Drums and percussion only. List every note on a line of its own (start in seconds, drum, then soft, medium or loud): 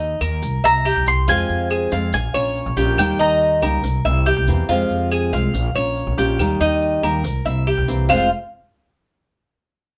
0.00 maracas soft
0.21 claves medium
0.21 maracas medium
0.42 maracas medium
0.64 maracas soft
0.85 claves medium
0.85 maracas soft
1.06 maracas medium
1.28 maracas medium
1.49 maracas soft
1.70 claves medium
1.70 maracas soft
1.91 maracas medium
2.13 maracas loud
2.34 claves medium
2.34 maracas soft
2.56 maracas soft
2.77 maracas medium
2.98 claves medium
2.98 maracas medium
3.20 maracas soft
3.41 maracas soft
3.62 claves medium
3.62 maracas medium
3.84 maracas medium
4.05 maracas soft
4.26 claves medium
4.26 maracas soft
4.47 maracas medium
4.69 maracas medium
4.90 maracas soft
5.12 claves medium
5.12 maracas soft
5.33 maracas medium
5.54 maracas loud
5.76 claves medium
5.76 maracas soft
5.97 maracas soft
6.18 maracas medium
6.39 claves medium
6.39 maracas medium
6.61 maracas soft
6.82 maracas soft
7.03 claves medium
7.03 maracas medium
7.24 maracas loud
7.46 maracas soft
7.67 claves medium
7.67 maracas soft
7.88 maracas medium
8.09 claves loud
8.09 maracas loud